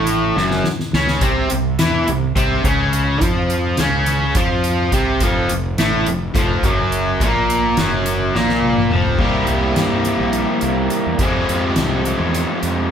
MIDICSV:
0, 0, Header, 1, 4, 480
1, 0, Start_track
1, 0, Tempo, 570342
1, 1027, Time_signature, 7, 3, 24, 8
1, 10865, End_track
2, 0, Start_track
2, 0, Title_t, "Overdriven electric guitar"
2, 0, Program_c, 0, 29
2, 0, Note_on_c, 0, 45, 88
2, 0, Note_on_c, 0, 57, 80
2, 298, Note_off_c, 0, 45, 0
2, 301, Note_off_c, 0, 57, 0
2, 303, Note_on_c, 0, 42, 92
2, 312, Note_on_c, 0, 54, 90
2, 538, Note_off_c, 0, 42, 0
2, 542, Note_off_c, 0, 54, 0
2, 795, Note_on_c, 0, 49, 84
2, 796, Note_on_c, 0, 61, 105
2, 1020, Note_off_c, 0, 49, 0
2, 1023, Note_on_c, 0, 48, 79
2, 1024, Note_off_c, 0, 61, 0
2, 1031, Note_on_c, 0, 60, 108
2, 1258, Note_off_c, 0, 48, 0
2, 1262, Note_off_c, 0, 60, 0
2, 1267, Note_on_c, 0, 48, 67
2, 1459, Note_off_c, 0, 48, 0
2, 1508, Note_on_c, 0, 52, 85
2, 1513, Note_on_c, 0, 64, 87
2, 1741, Note_off_c, 0, 52, 0
2, 1743, Note_off_c, 0, 64, 0
2, 1753, Note_on_c, 0, 48, 69
2, 1942, Note_off_c, 0, 48, 0
2, 1985, Note_on_c, 0, 48, 84
2, 1988, Note_on_c, 0, 60, 97
2, 2219, Note_off_c, 0, 48, 0
2, 2221, Note_off_c, 0, 60, 0
2, 2226, Note_on_c, 0, 49, 88
2, 2232, Note_on_c, 0, 61, 99
2, 2709, Note_off_c, 0, 49, 0
2, 2709, Note_on_c, 0, 53, 90
2, 2712, Note_off_c, 0, 61, 0
2, 2712, Note_on_c, 0, 65, 86
2, 3182, Note_off_c, 0, 53, 0
2, 3183, Note_off_c, 0, 65, 0
2, 3190, Note_on_c, 0, 49, 89
2, 3195, Note_on_c, 0, 61, 99
2, 3662, Note_off_c, 0, 49, 0
2, 3665, Note_off_c, 0, 61, 0
2, 3673, Note_on_c, 0, 53, 94
2, 3679, Note_on_c, 0, 65, 88
2, 4143, Note_off_c, 0, 53, 0
2, 4147, Note_off_c, 0, 65, 0
2, 4147, Note_on_c, 0, 48, 93
2, 4151, Note_on_c, 0, 60, 95
2, 4380, Note_off_c, 0, 48, 0
2, 4382, Note_off_c, 0, 60, 0
2, 4390, Note_on_c, 0, 41, 81
2, 4397, Note_on_c, 0, 53, 93
2, 4617, Note_off_c, 0, 41, 0
2, 4626, Note_off_c, 0, 53, 0
2, 4627, Note_on_c, 0, 41, 74
2, 4820, Note_off_c, 0, 41, 0
2, 4870, Note_on_c, 0, 45, 90
2, 4873, Note_on_c, 0, 57, 96
2, 5102, Note_off_c, 0, 45, 0
2, 5103, Note_off_c, 0, 57, 0
2, 5108, Note_on_c, 0, 41, 72
2, 5300, Note_off_c, 0, 41, 0
2, 5334, Note_on_c, 0, 41, 81
2, 5347, Note_on_c, 0, 53, 92
2, 5574, Note_off_c, 0, 41, 0
2, 5580, Note_off_c, 0, 53, 0
2, 5592, Note_on_c, 0, 42, 94
2, 5596, Note_on_c, 0, 54, 103
2, 6062, Note_off_c, 0, 42, 0
2, 6064, Note_off_c, 0, 54, 0
2, 6065, Note_on_c, 0, 46, 77
2, 6066, Note_on_c, 0, 58, 92
2, 6539, Note_off_c, 0, 46, 0
2, 6539, Note_off_c, 0, 58, 0
2, 6544, Note_on_c, 0, 42, 86
2, 6553, Note_on_c, 0, 54, 96
2, 7018, Note_off_c, 0, 42, 0
2, 7022, Note_off_c, 0, 54, 0
2, 7025, Note_on_c, 0, 46, 90
2, 7026, Note_on_c, 0, 58, 84
2, 7495, Note_on_c, 0, 41, 75
2, 7498, Note_off_c, 0, 46, 0
2, 7498, Note_on_c, 0, 53, 102
2, 7499, Note_off_c, 0, 58, 0
2, 7733, Note_off_c, 0, 41, 0
2, 7733, Note_on_c, 0, 48, 75
2, 7735, Note_off_c, 0, 53, 0
2, 7743, Note_on_c, 0, 55, 81
2, 7749, Note_on_c, 0, 58, 83
2, 7750, Note_on_c, 0, 64, 93
2, 7755, Note_on_c, 0, 67, 89
2, 9404, Note_off_c, 0, 48, 0
2, 9409, Note_off_c, 0, 55, 0
2, 9412, Note_off_c, 0, 58, 0
2, 9413, Note_off_c, 0, 64, 0
2, 9415, Note_off_c, 0, 67, 0
2, 9427, Note_on_c, 0, 41, 80
2, 9428, Note_on_c, 0, 48, 86
2, 9432, Note_on_c, 0, 53, 83
2, 9432, Note_on_c, 0, 56, 84
2, 9437, Note_on_c, 0, 60, 81
2, 9442, Note_on_c, 0, 68, 80
2, 10865, Note_off_c, 0, 41, 0
2, 10865, Note_off_c, 0, 48, 0
2, 10865, Note_off_c, 0, 53, 0
2, 10865, Note_off_c, 0, 56, 0
2, 10865, Note_off_c, 0, 60, 0
2, 10865, Note_off_c, 0, 68, 0
2, 10865, End_track
3, 0, Start_track
3, 0, Title_t, "Fingered electric bass"
3, 0, Program_c, 1, 33
3, 0, Note_on_c, 1, 33, 89
3, 269, Note_off_c, 1, 33, 0
3, 304, Note_on_c, 1, 30, 92
3, 529, Note_off_c, 1, 30, 0
3, 789, Note_on_c, 1, 37, 95
3, 1011, Note_off_c, 1, 37, 0
3, 1021, Note_on_c, 1, 36, 86
3, 1247, Note_off_c, 1, 36, 0
3, 1276, Note_on_c, 1, 36, 76
3, 1495, Note_off_c, 1, 36, 0
3, 1519, Note_on_c, 1, 40, 83
3, 1737, Note_off_c, 1, 40, 0
3, 1750, Note_on_c, 1, 36, 76
3, 1972, Note_off_c, 1, 36, 0
3, 1988, Note_on_c, 1, 36, 98
3, 2211, Note_off_c, 1, 36, 0
3, 2223, Note_on_c, 1, 37, 102
3, 2672, Note_off_c, 1, 37, 0
3, 2707, Note_on_c, 1, 41, 81
3, 3154, Note_off_c, 1, 41, 0
3, 3190, Note_on_c, 1, 37, 87
3, 3636, Note_off_c, 1, 37, 0
3, 3661, Note_on_c, 1, 41, 102
3, 4111, Note_off_c, 1, 41, 0
3, 4144, Note_on_c, 1, 36, 85
3, 4369, Note_off_c, 1, 36, 0
3, 4383, Note_on_c, 1, 29, 88
3, 4609, Note_off_c, 1, 29, 0
3, 4635, Note_on_c, 1, 29, 78
3, 4855, Note_off_c, 1, 29, 0
3, 4877, Note_on_c, 1, 33, 83
3, 5096, Note_off_c, 1, 33, 0
3, 5112, Note_on_c, 1, 29, 84
3, 5333, Note_off_c, 1, 29, 0
3, 5345, Note_on_c, 1, 29, 101
3, 5569, Note_off_c, 1, 29, 0
3, 5576, Note_on_c, 1, 30, 100
3, 6028, Note_off_c, 1, 30, 0
3, 6064, Note_on_c, 1, 34, 91
3, 6512, Note_off_c, 1, 34, 0
3, 6541, Note_on_c, 1, 30, 92
3, 6990, Note_off_c, 1, 30, 0
3, 7034, Note_on_c, 1, 34, 88
3, 7477, Note_off_c, 1, 34, 0
3, 7520, Note_on_c, 1, 29, 89
3, 7726, Note_off_c, 1, 29, 0
3, 7731, Note_on_c, 1, 36, 98
3, 7947, Note_off_c, 1, 36, 0
3, 7977, Note_on_c, 1, 36, 83
3, 8190, Note_off_c, 1, 36, 0
3, 8214, Note_on_c, 1, 43, 80
3, 8534, Note_off_c, 1, 43, 0
3, 8580, Note_on_c, 1, 34, 75
3, 8792, Note_off_c, 1, 34, 0
3, 8943, Note_on_c, 1, 36, 92
3, 9153, Note_off_c, 1, 36, 0
3, 9312, Note_on_c, 1, 40, 69
3, 9410, Note_off_c, 1, 40, 0
3, 9415, Note_on_c, 1, 41, 89
3, 9629, Note_off_c, 1, 41, 0
3, 9671, Note_on_c, 1, 41, 87
3, 9878, Note_off_c, 1, 41, 0
3, 9907, Note_on_c, 1, 36, 86
3, 10220, Note_off_c, 1, 36, 0
3, 10265, Note_on_c, 1, 40, 79
3, 10474, Note_off_c, 1, 40, 0
3, 10628, Note_on_c, 1, 41, 85
3, 10836, Note_off_c, 1, 41, 0
3, 10865, End_track
4, 0, Start_track
4, 0, Title_t, "Drums"
4, 56, Note_on_c, 9, 42, 70
4, 140, Note_off_c, 9, 42, 0
4, 312, Note_on_c, 9, 38, 59
4, 396, Note_off_c, 9, 38, 0
4, 424, Note_on_c, 9, 38, 61
4, 508, Note_off_c, 9, 38, 0
4, 540, Note_on_c, 9, 38, 78
4, 624, Note_off_c, 9, 38, 0
4, 668, Note_on_c, 9, 38, 71
4, 752, Note_off_c, 9, 38, 0
4, 784, Note_on_c, 9, 38, 89
4, 869, Note_off_c, 9, 38, 0
4, 902, Note_on_c, 9, 38, 84
4, 987, Note_off_c, 9, 38, 0
4, 1019, Note_on_c, 9, 36, 110
4, 1021, Note_on_c, 9, 42, 91
4, 1103, Note_off_c, 9, 36, 0
4, 1105, Note_off_c, 9, 42, 0
4, 1261, Note_on_c, 9, 42, 70
4, 1345, Note_off_c, 9, 42, 0
4, 1505, Note_on_c, 9, 42, 85
4, 1508, Note_on_c, 9, 38, 115
4, 1589, Note_off_c, 9, 42, 0
4, 1592, Note_off_c, 9, 38, 0
4, 1747, Note_on_c, 9, 42, 61
4, 1831, Note_off_c, 9, 42, 0
4, 1984, Note_on_c, 9, 36, 112
4, 1991, Note_on_c, 9, 42, 86
4, 2068, Note_off_c, 9, 36, 0
4, 2075, Note_off_c, 9, 42, 0
4, 2224, Note_on_c, 9, 36, 103
4, 2229, Note_on_c, 9, 42, 65
4, 2309, Note_off_c, 9, 36, 0
4, 2313, Note_off_c, 9, 42, 0
4, 2465, Note_on_c, 9, 42, 56
4, 2550, Note_off_c, 9, 42, 0
4, 2703, Note_on_c, 9, 36, 104
4, 2706, Note_on_c, 9, 42, 95
4, 2787, Note_off_c, 9, 36, 0
4, 2790, Note_off_c, 9, 42, 0
4, 2944, Note_on_c, 9, 42, 70
4, 3028, Note_off_c, 9, 42, 0
4, 3176, Note_on_c, 9, 42, 83
4, 3178, Note_on_c, 9, 38, 108
4, 3260, Note_off_c, 9, 42, 0
4, 3262, Note_off_c, 9, 38, 0
4, 3420, Note_on_c, 9, 42, 69
4, 3422, Note_on_c, 9, 38, 35
4, 3504, Note_off_c, 9, 42, 0
4, 3506, Note_off_c, 9, 38, 0
4, 3660, Note_on_c, 9, 42, 99
4, 3662, Note_on_c, 9, 36, 107
4, 3744, Note_off_c, 9, 42, 0
4, 3746, Note_off_c, 9, 36, 0
4, 3904, Note_on_c, 9, 42, 76
4, 3988, Note_off_c, 9, 42, 0
4, 4142, Note_on_c, 9, 36, 91
4, 4143, Note_on_c, 9, 42, 67
4, 4226, Note_off_c, 9, 36, 0
4, 4227, Note_off_c, 9, 42, 0
4, 4380, Note_on_c, 9, 42, 96
4, 4382, Note_on_c, 9, 36, 108
4, 4464, Note_off_c, 9, 42, 0
4, 4466, Note_off_c, 9, 36, 0
4, 4623, Note_on_c, 9, 42, 64
4, 4707, Note_off_c, 9, 42, 0
4, 4865, Note_on_c, 9, 42, 86
4, 4868, Note_on_c, 9, 38, 109
4, 4950, Note_off_c, 9, 42, 0
4, 4952, Note_off_c, 9, 38, 0
4, 5104, Note_on_c, 9, 42, 71
4, 5188, Note_off_c, 9, 42, 0
4, 5341, Note_on_c, 9, 36, 116
4, 5347, Note_on_c, 9, 42, 91
4, 5349, Note_on_c, 9, 38, 34
4, 5425, Note_off_c, 9, 36, 0
4, 5431, Note_off_c, 9, 42, 0
4, 5433, Note_off_c, 9, 38, 0
4, 5581, Note_on_c, 9, 36, 103
4, 5585, Note_on_c, 9, 42, 64
4, 5665, Note_off_c, 9, 36, 0
4, 5669, Note_off_c, 9, 42, 0
4, 5825, Note_on_c, 9, 42, 56
4, 5909, Note_off_c, 9, 42, 0
4, 6062, Note_on_c, 9, 36, 113
4, 6068, Note_on_c, 9, 42, 87
4, 6146, Note_off_c, 9, 36, 0
4, 6152, Note_off_c, 9, 42, 0
4, 6311, Note_on_c, 9, 42, 62
4, 6395, Note_off_c, 9, 42, 0
4, 6540, Note_on_c, 9, 42, 79
4, 6542, Note_on_c, 9, 38, 106
4, 6624, Note_off_c, 9, 42, 0
4, 6626, Note_off_c, 9, 38, 0
4, 6782, Note_on_c, 9, 42, 64
4, 6784, Note_on_c, 9, 38, 31
4, 6866, Note_off_c, 9, 42, 0
4, 6868, Note_off_c, 9, 38, 0
4, 7026, Note_on_c, 9, 38, 64
4, 7110, Note_off_c, 9, 38, 0
4, 7143, Note_on_c, 9, 38, 56
4, 7227, Note_off_c, 9, 38, 0
4, 7257, Note_on_c, 9, 48, 78
4, 7341, Note_off_c, 9, 48, 0
4, 7379, Note_on_c, 9, 47, 68
4, 7463, Note_off_c, 9, 47, 0
4, 7494, Note_on_c, 9, 45, 86
4, 7578, Note_off_c, 9, 45, 0
4, 7616, Note_on_c, 9, 43, 78
4, 7700, Note_off_c, 9, 43, 0
4, 7727, Note_on_c, 9, 49, 104
4, 7732, Note_on_c, 9, 36, 109
4, 7811, Note_off_c, 9, 49, 0
4, 7816, Note_off_c, 9, 36, 0
4, 7969, Note_on_c, 9, 42, 61
4, 8053, Note_off_c, 9, 42, 0
4, 8215, Note_on_c, 9, 42, 84
4, 8217, Note_on_c, 9, 38, 101
4, 8299, Note_off_c, 9, 42, 0
4, 8302, Note_off_c, 9, 38, 0
4, 8455, Note_on_c, 9, 42, 59
4, 8540, Note_off_c, 9, 42, 0
4, 8693, Note_on_c, 9, 42, 71
4, 8777, Note_off_c, 9, 42, 0
4, 8930, Note_on_c, 9, 42, 59
4, 9014, Note_off_c, 9, 42, 0
4, 9176, Note_on_c, 9, 42, 56
4, 9260, Note_off_c, 9, 42, 0
4, 9417, Note_on_c, 9, 42, 82
4, 9418, Note_on_c, 9, 36, 112
4, 9501, Note_off_c, 9, 42, 0
4, 9502, Note_off_c, 9, 36, 0
4, 9670, Note_on_c, 9, 42, 58
4, 9754, Note_off_c, 9, 42, 0
4, 9896, Note_on_c, 9, 42, 83
4, 9899, Note_on_c, 9, 38, 100
4, 9980, Note_off_c, 9, 42, 0
4, 9983, Note_off_c, 9, 38, 0
4, 10145, Note_on_c, 9, 42, 59
4, 10229, Note_off_c, 9, 42, 0
4, 10390, Note_on_c, 9, 42, 76
4, 10392, Note_on_c, 9, 38, 34
4, 10474, Note_off_c, 9, 42, 0
4, 10476, Note_off_c, 9, 38, 0
4, 10627, Note_on_c, 9, 42, 54
4, 10630, Note_on_c, 9, 38, 31
4, 10711, Note_off_c, 9, 42, 0
4, 10714, Note_off_c, 9, 38, 0
4, 10865, End_track
0, 0, End_of_file